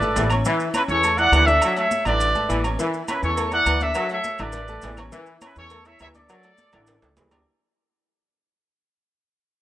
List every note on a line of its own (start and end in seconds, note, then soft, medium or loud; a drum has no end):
0.00 0.15 G#1 medium
0.00 0.25 A3 medium
0.00 0.26 A4 medium
0.00 0.31 B4 medium
0.00 0.30 D5 medium
0.00 0.26 A5 medium
0.00 high conga soft
0.00 maracas soft
0.15 0.42 A1 loud
0.15 0.31 E3 medium
0.15 high conga medium
0.15 low timbale medium
0.15 low agogo medium
0.15 maracas medium
0.30 0.43 C#4 medium
0.30 0.43 C#5 medium
0.30 0.43 C#6 medium
0.30 high conga medium
0.30 low agogo loud
0.30 claves medium
0.30 maracas soft
0.45 0.68 E3 loud
0.45 0.70 E3 loud
0.45 0.70 E4 medium
0.45 0.70 E5 medium
0.45 high conga soft
0.45 maracas medium
0.59 high conga soft
0.59 maracas soft
0.74 0.99 C#4 medium
0.74 0.82 E4 medium
0.74 0.82 B4 medium
0.74 0.99 C#5 medium
0.74 0.99 C#6 medium
0.74 high conga loud
0.74 low agogo loud
0.74 claves medium
0.74 maracas medium
0.88 1.29 E2 loud
0.88 1.13 E3 medium
0.88 1.17 A4 medium
0.88 1.16 C#5 loud
0.88 high conga soft
0.88 maracas soft
1.03 1.15 A3 medium
1.03 1.16 A4 medium
1.03 1.16 A5 medium
1.03 high conga soft
1.03 low agogo medium
1.03 maracas medium
1.18 1.42 E4 medium
1.18 1.48 D5 medium
1.18 1.43 E5 medium
1.18 1.47 F#5 loud
1.18 1.43 E6 medium
1.18 high conga soft
1.18 low agogo medium
1.18 maracas soft
1.32 1.58 D2 loud
1.32 1.48 E3 medium
1.32 high conga medium
1.32 low timbale medium
1.32 low agogo loud
1.32 claves medium
1.32 maracas medium
1.46 1.71 D4 medium
1.46 1.76 A4 medium
1.46 1.72 D5 medium
1.46 1.76 E5 loud
1.46 1.72 D6 medium
1.46 high conga medium
1.46 maracas soft
1.62 1.85 F#3 medium
1.62 low agogo loud
1.62 claves medium
1.62 maracas medium
1.76 2.01 A3 medium
1.76 2.01 A4 medium
1.76 2.04 C#5 medium
1.76 2.04 E5 loud
1.76 2.01 A5 medium
1.76 high conga soft
1.76 low agogo medium
1.76 maracas soft
1.91 high conga loud
1.91 maracas medium
2.05 2.33 A1 loud
2.05 2.29 D3 medium
2.05 2.30 E3 medium
2.05 2.30 E4 medium
2.05 2.61 B4 medium
2.05 2.60 D5 loud
2.05 2.30 E5 medium
2.05 high conga soft
2.05 low conga medium
2.05 low agogo loud
2.05 claves medium
2.05 maracas soft
2.20 high conga soft
2.20 low agogo medium
2.20 maracas medium
2.35 2.49 G#1 medium
2.35 2.59 A3 medium
2.35 2.59 A4 medium
2.35 2.60 A5 medium
2.35 high conga soft
2.35 maracas soft
2.49 2.75 A1 loud
2.49 2.64 E3 medium
2.49 high conga medium
2.49 low agogo medium
2.49 maracas medium
2.64 2.76 C#4 medium
2.64 2.77 C#5 medium
2.64 2.77 C#6 medium
2.64 high conga medium
2.64 low agogo loud
2.64 claves medium
2.64 maracas soft
2.79 3.02 E3 medium
2.79 3.03 E3 medium
2.79 3.03 E4 medium
2.79 3.03 E5 medium
2.79 cowbell loud
2.79 maracas medium
2.94 high conga soft
2.94 maracas soft
3.08 3.33 C#4 medium
3.08 3.22 E4 medium
3.08 3.22 B4 medium
3.08 3.33 C#5 medium
3.08 3.33 C#6 medium
3.08 cowbell medium
3.08 high conga medium
3.08 low agogo loud
3.08 claves medium
3.08 maracas medium
3.22 3.63 E2 loud
3.22 3.45 E3 medium
3.22 3.50 A4 medium
3.22 3.50 C#5 loud
3.22 high conga soft
3.22 maracas soft
3.37 3.50 A3 medium
3.37 3.50 A4 medium
3.37 3.50 A5 medium
3.37 cowbell loud
3.37 high conga soft
3.37 low agogo medium
3.37 maracas medium
3.51 3.76 E4 medium
3.51 3.79 D5 medium
3.51 3.77 E5 medium
3.51 3.80 F#5 loud
3.51 3.77 E6 medium
3.51 high conga soft
3.51 low agogo medium
3.51 maracas soft
3.66 3.92 D2 loud
3.66 3.82 E3 medium
3.66 cowbell medium
3.66 high conga medium
3.66 low agogo loud
3.66 claves medium
3.66 maracas medium
3.80 4.06 D4 medium
3.80 4.11 A4 medium
3.80 4.06 D5 medium
3.80 4.11 E5 loud
3.80 4.06 D6 medium
3.80 cowbell medium
3.80 high conga medium
3.80 maracas soft
3.94 4.18 F#3 loud
3.94 cowbell loud
3.94 low agogo loud
3.94 claves medium
3.94 maracas medium
4.09 4.35 A3 medium
4.09 4.35 A4 medium
4.09 4.39 C#5 medium
4.09 4.39 E5 loud
4.09 4.35 A5 medium
4.09 high conga soft
4.09 low agogo medium
4.09 maracas soft
4.24 cowbell medium
4.24 high conga loud
4.24 maracas medium
4.38 4.80 A1 loud
4.38 4.62 D3 medium
4.38 4.63 E3 medium
4.38 4.63 E4 loud
4.38 4.99 B4 medium
4.38 4.99 D5 loud
4.38 4.64 E5 loud
4.38 cowbell medium
4.38 high conga soft
4.38 low conga medium
4.38 low agogo loud
4.38 claves medium
4.38 maracas soft
4.52 cowbell loud
4.52 high conga soft
4.52 low conga medium
4.52 low agogo medium
4.52 maracas medium
4.68 4.93 A3 medium
4.68 4.93 A4 medium
4.68 4.93 A5 medium
4.68 high conga soft
4.68 maracas soft
4.82 5.09 A1 loud
4.82 4.98 E3 medium
4.82 cowbell medium
4.82 high conga medium
4.82 low timbale medium
4.82 low agogo medium
4.82 maracas medium
4.97 5.10 C#4 medium
4.97 5.10 C#5 medium
4.97 5.10 C#6 medium
4.97 cowbell medium
4.97 high conga medium
4.97 low agogo loud
4.97 claves medium
4.97 maracas soft
5.12 5.35 E3 loud
5.12 5.36 E3 loud
5.12 5.37 E4 medium
5.12 5.37 E5 loud
5.12 cowbell loud
5.12 maracas medium
5.26 high conga soft
5.26 maracas soft
5.41 5.66 C#4 medium
5.41 5.57 E4 medium
5.41 5.57 B4 medium
5.41 5.66 C#5 medium
5.41 5.66 C#6 medium
5.41 cowbell medium
5.41 high conga loud
5.41 low agogo loud
5.41 claves medium
5.41 maracas medium
5.56 5.97 E2 loud
5.56 5.79 E3 medium
5.56 5.84 A4 medium
5.56 5.84 C#5 loud
5.56 high conga soft
5.56 maracas soft
5.70 5.83 A3 medium
5.70 5.83 A4 medium
5.70 5.84 A5 medium
5.70 cowbell loud
5.70 high conga soft
5.70 low agogo medium
5.70 maracas medium
5.85 6.10 E4 medium
5.85 6.01 C#5 medium
5.85 6.10 E5 medium
5.85 6.01 E5 loud
5.85 6.10 E6 medium
5.85 high conga soft
5.85 low agogo medium
5.85 maracas soft
5.99 6.26 D2 loud
5.99 6.15 E3 medium
5.99 6.08 C#5 medium
5.99 6.08 E5 loud
5.99 cowbell medium
5.99 high conga medium
5.99 low timbale medium
5.99 low agogo loud
5.99 claves medium
5.99 maracas medium
6.14 6.39 D4 medium
6.14 7.14 A4 medium
6.14 6.39 D5 medium
6.14 7.14 D5 loud
6.14 6.39 D6 medium
6.14 cowbell medium
6.14 high conga medium
6.14 maracas soft
6.29 6.52 F#3 loud
6.29 cowbell loud
6.29 high conga soft
6.29 low agogo loud
6.29 claves medium
6.29 maracas medium
6.43 6.68 A3 medium
6.43 6.68 A4 medium
6.43 6.68 A5 medium
6.43 high conga soft
6.43 low agogo medium
6.43 maracas soft
6.58 cowbell medium
6.58 high conga loud
6.58 maracas medium
6.72 7.00 A1 loud
6.72 6.96 D3 medium
6.72 6.97 E3 medium
6.72 6.97 E4 medium
6.72 6.98 E5 medium
6.72 cowbell medium
6.72 high conga soft
6.72 low conga medium
6.72 high timbale medium
6.72 low agogo loud
6.72 claves medium
6.72 maracas soft
6.87 cowbell loud
6.87 high conga soft
6.87 high timbale medium
6.87 low agogo medium
6.87 maracas medium
7.02 7.16 C#2 medium
7.02 7.27 A3 medium
7.02 7.27 A4 medium
7.02 7.27 A5 medium
7.02 high conga soft
7.02 high timbale loud
7.02 maracas soft
7.16 7.43 D2 loud
7.16 7.32 E3 medium
7.16 cowbell medium
7.16 high conga medium
7.16 low timbale loud
7.16 low agogo medium
7.16 maracas medium
7.31 7.44 D4 medium
7.31 7.44 D5 medium
7.31 7.44 D6 medium
7.31 cowbell medium
7.31 high conga loud
7.31 low timbale loud
7.31 low agogo loud
7.31 claves medium
7.31 maracas soft